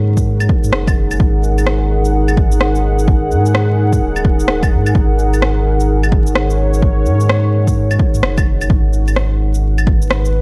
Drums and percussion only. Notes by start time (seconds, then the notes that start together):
0.17 kick, shaker
0.40 claves, shaker
0.49 kick
0.64 shaker
0.73 cross-stick
0.88 kick, claves, shaker
1.11 claves, shaker
1.20 kick
1.44 shaker
1.58 claves, shaker
1.66 cross-stick
2.05 shaker
2.28 claves, shaker
2.37 kick
2.52 shaker
2.61 cross-stick
2.75 shaker
2.99 shaker
3.08 kick
3.31 shaker
3.46 shaker
3.55 cross-stick
3.93 kick, shaker
4.16 claves, shaker
4.25 kick
4.40 shaker
4.48 cross-stick
4.63 kick, claves, shaker
4.86 claves, shaker
4.95 kick
5.19 shaker
5.34 claves, shaker
5.42 cross-stick
5.80 shaker
6.04 claves, shaker
6.12 kick
6.27 shaker
6.35 cross-stick
6.50 shaker
6.74 shaker
6.82 kick
7.06 shaker
7.20 shaker
7.29 cross-stick
7.67 kick, shaker
7.91 claves, shaker
8.00 kick
8.14 shaker
8.23 cross-stick
8.38 kick, claves, shaker
8.61 claves, shaker
8.70 kick
8.93 shaker
9.08 claves, shaker
9.16 cross-stick
9.55 shaker
9.78 claves, shaker
9.87 kick
10.02 shaker
10.11 cross-stick
10.25 shaker